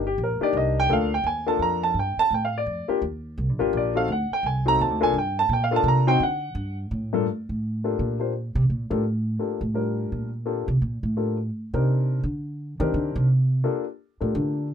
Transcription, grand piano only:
0.07 G4
0.23 A#4
0.41 A#3 D4 D#4 G4 D5
0.57 D#5
0.80 G5
0.89 A#3 D4 F4 A4 F5
1.14 G5
1.27 G#5
1.46 A#3 D4 F4 A4 A5
1.62 A#5
1.83 A5
1.99 G5
2.19 A5
2.34 G5
2.45 F5
2.58 D5
2.88 A#3 D4 F4 G4
3.59 A#3 D4 F4 G4
3.77 D5
3.95 C4 D#4 F#4 A4 F5
4.12 F#5
4.33 G5
4.46 G#5
4.65 C4 D#4 F#4 A4 A#5
4.81 A5
5.01 A#3 D4 F4 A4 G#5
5.18 G5
5.39 A5
5.53 G5
5.64 F5
5.71 A#3 D4 F4 A4
5.76 A5
5.88 A#5
6.07 C4 D#4 F#4 C5 G5
6.23 F#5
7.13 G2 A#3 D4 F4 A4
7.84 A#3 D4 F4 G4 A4
8.20 A#3 D4 F4 G4 C5
8.90 A#3 D4 F4 G4 A4
9.39 A#3 D4 F4 G4 A4
9.74 G3 D4 F4 G4 A#4
10.46 A#3 D4 F4 G4 A4
11.17 A#3 D4 F4 G4 A4
11.73 C4 D4 D#4 G4 A#4
12.80 C4 D4 D#4 G4 A#4
13.64 A#3 D4 F4 G4 A4
14.20 A#3 D4 F4 G4 A4

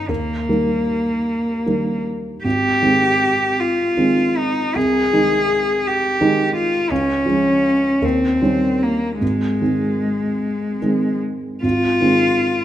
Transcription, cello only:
Already playing: D#4
0.09 A#3
2.44 G4
3.59 F4
4.37 D#4
4.76 G#4
5.87 G4
6.55 F4
6.90 C#4
8.04 C4
8.83 A#3
9.22 G#3
11.63 F4

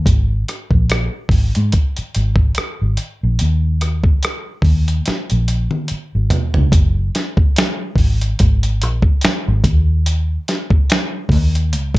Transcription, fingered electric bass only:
0.07 G#1
0.72 A#1
1.30 G#1
1.57 G#2
1.98 muted fingered electric bass stroke
2.16 G#1
2.58 muted fingered electric bass stroke
2.82 G#1
3.23 A#1
3.41 D#2
4.63 D#2
5.08 muted fingered electric bass stroke
5.32 A#1
5.91 muted fingered electric bass stroke
6.15 G#1
6.57 C#2
6.73 F#1
7.97 G#1
8.41 G#1
8.83 A#1
9.24 muted fingered electric bass stroke
9.48 G#1
9.65 D#2
11.30 D#2
11.75 C#2

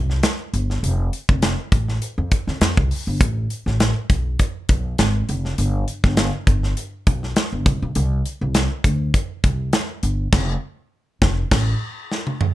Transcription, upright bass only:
Already playing: C2
0.53 G1
0.83 F1
1.29 F1
1.72 A1
2.18 F2
2.47 F2
2.61 F2
2.77 C2
3.07 G1
3.21 A1
3.66 A1
4.10 B1
4.69 B1
4.99 G#1
5.29 F1
5.58 G1
6.04 G1
6.47 G1
7.07 B1
7.53 G1
7.66 C2
7.82 B1
7.96 C2
8.41 C2
8.84 D2
9.44 C2
10.03 G1
10.33 F1
11.22 F1
11.51 A1

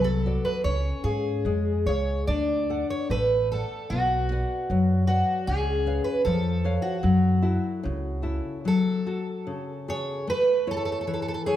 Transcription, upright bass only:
Already playing: C2
0.64 C#2
1.04 G#2
1.45 F2
1.86 C#2
2.28 D2
3.10 A1
3.91 B1
4.70 F#2
5.48 C#2
6.26 F2
7.04 F#2
7.85 C#2

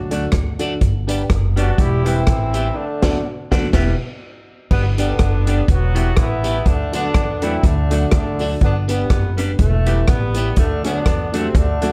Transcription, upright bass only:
Already playing: D2
0.33 D2
0.81 G1
1.30 F#1
1.78 E1
2.28 A1
3.03 D2
3.52 D2
3.74 E1
4.71 G1
5.20 F#1
5.69 E1
6.17 A1
6.66 D2
7.15 E2
7.64 D2
8.12 D2
8.62 G1
9.10 F#1
9.59 E1
10.08 A1
10.57 D2
11.06 E2
11.55 D2

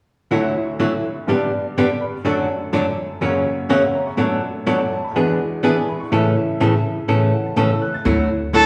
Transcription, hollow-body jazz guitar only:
0.31 D3 F#3 A3 E4 F#4
0.80 D3 F#3 A3 E4 F#4
1.28 G2 D3 G3 B3 D4 G4
1.78 G2 D3 G3 B3 D4 G4
2.25 F#2 D3 F#3 A3 D4 F#4
2.73 F#2 D3 F#3 A3 D4 F#4
3.21 F#2 C#3 F#3 A#3 C#4 F#4
3.69 F#2 C#3 F#3 A#3 C#4 F#4
4.17 F#2 B2 F#3 A3 D4 F#4
4.67 F#2 B2 F#3 A3 D4 F#4
5.16 E3 B3 D4 G#4
5.63 E3 B3 D4 G#4
6.12 A2 C#3 E3 A3 C#4 A4
6.60 A2 C#3 E3 A3 C#4 A4
7.08 A2 C#3 E3 A3 C#4 A4
7.57 A2 C#3 E3 A3 C#4 A4
8.05 D3 F#3 A3 E4 F#4
8.53 D3 F#3 A3 E4 F#4

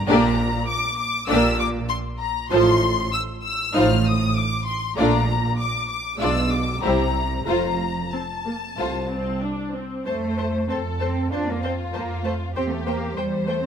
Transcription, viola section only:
0.09 A#3 D4
1.29 A#3 D4
2.51 F3 F4
3.74 F3 D#4
4.97 A3 D4
6.21 G#3 D4
6.83 G3 E4
7.46 A3 F4
8.13 C4
8.45 A#3
8.78 A3
9.10 C4
9.41 D4
9.74 C4
10.06 C5
10.37 C5
10.69 C5
11.00 C5
11.32 C5
11.63 C5
11.94 C5
12.25 C5
12.56 C5
12.86 C5
13.17 C5
13.47 C5

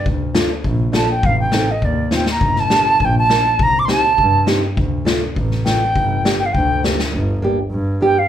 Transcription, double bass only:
0.06 D2
0.64 A#1
1.23 A1
1.82 D#2
2.41 G1
3.00 A#1
3.59 C2
4.18 G2
4.77 D2
5.36 A1
5.96 G1
6.54 D2
7.12 G1
7.71 G2

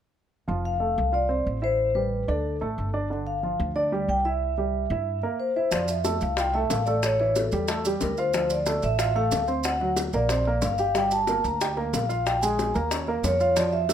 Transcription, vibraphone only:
0.65 F5
1.14 D5
1.64 C5
1.95 B4
2.29 A4
3.27 F5
3.76 D5
4.09 G5
4.25 E5
5.40 C5
5.57 C5
5.73 D5
5.90 E5
6.22 F5
6.39 G5
6.54 E5
6.71 F5
6.86 D5
7.04 C#5
7.37 A4
8.02 A#4
8.19 C5
8.51 D5
8.84 E5
9.16 F5
9.64 F#5
10.14 D5
10.64 F5
10.79 F5
10.96 G5
11.12 A5
11.45 A#5
11.95 F5
12.10 F5
12.26 G5
12.41 G#5
12.74 A#5
13.24 C#5
13.40 C#5
13.56 D5
13.73 E5

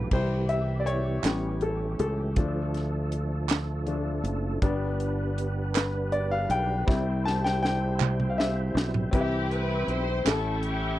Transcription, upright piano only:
Already playing: G2 F4 G4 A4 B4
0.12 C3 G3 E4 C5
0.49 E5
0.80 D5
0.86 C#5
1.24 G3 B3 C#4
1.62 A4
2.00 A4
2.37 F3 A3 D4
3.87 F3 A3 D4
4.62 G3 B3 D4
5.75 B4
6.12 D5
6.31 F5
6.51 G5
6.87 G3 C4 E4
7.25 A5
7.44 G5
7.63 G5
8.30 F5
8.38 E5
9.11 E3 C4 E4 G4 B4
9.21 E5
10.25 A2 C#4 E4 G4 A4

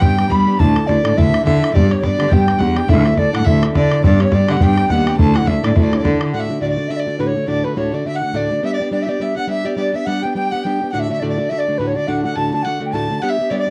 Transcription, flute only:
0.00 G5
0.30 B5
0.60 A5
0.87 D5
1.17 E5
1.46 E5
1.75 D5
1.88 D5
1.93 C#5
2.05 D5
2.33 G5
2.62 F#5
2.77 G5
2.90 E5
3.19 D5
3.34 F#5
3.46 E5
3.76 D5
4.05 D5
4.24 C#5
4.34 D5
4.52 F#5
4.63 G5
4.91 F#5
5.07 G5
5.20 A5
5.37 F#5
5.48 E5
5.66 D5
5.77 E5
5.83 D5
5.97 C#5
6.03 D5
6.32 F#5
6.40 E5
6.60 D5
6.68 D5
6.88 E5
6.97 D5
7.19 B4
7.27 C#5
7.48 D5
7.64 B4
7.76 C#5
7.94 D5
8.06 E5
8.15 F#5
8.36 D5
8.65 E5
8.74 D5
8.92 D5
9.02 E5
9.09 D5
9.23 E5
9.38 F#5
9.50 E5
9.66 D5
9.78 D5
9.96 E5
10.05 F#5
10.22 G5
10.36 G5
10.51 F#5
10.64 G5
10.90 F#5 G5
10.99 E5
11.04 E5
11.10 E5
11.20 D5
11.28 D5
11.49 E5
11.58 D5
11.78 B4
11.87 C#5
11.96 D5
12.08 F#5
12.23 F#5
12.35 A5
12.53 A5
12.63 F#5
12.86 G5
12.94 A5
13.21 F#5
13.30 E5
13.52 D5
13.59 D5

